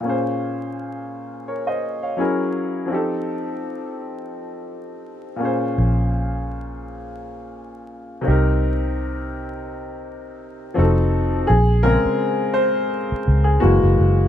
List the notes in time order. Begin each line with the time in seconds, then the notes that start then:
0.00 A#2 A#3
0.05 C#4 G#4
0.09 C5
1.48 A#4 C#5
1.67 C5 D#5
2.03 C#5 F5
2.17 F#3 C#4 E4 G#4
2.21 A#4
2.86 F3 C4
2.90 D#4 G4
2.94 A4
5.36 A#2 A#3
5.40 C#4 G#4
5.45 C5
5.78 A#1
8.21 C3 C4
8.25 C2 D#4 G4
8.30 A#4
10.74 F1 F3 C4 D#4 F#4
10.79 A4
11.47 A#1 G#4
11.83 C#3 G#3 C4 A#4
12.05 muted fingered electric bass stroke
12.54 C5
13.12 muted fingered electric bass stroke
13.28 C#2
13.44 G#4
13.60 F#1 E3 G#3 A#3 F#4
13.83 F#1
13.99 F#1